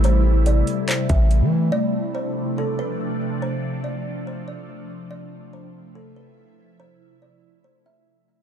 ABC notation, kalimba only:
X:1
M:4/4
L:1/8
Q:1/4=142
K:Ddor
V:1 name="Kalimba"
c2 d2 c e z2 | d2 c2 A B3 | c2 d2 c d3 | d2 c2 A B3 |
c2 d2 c e z2 |]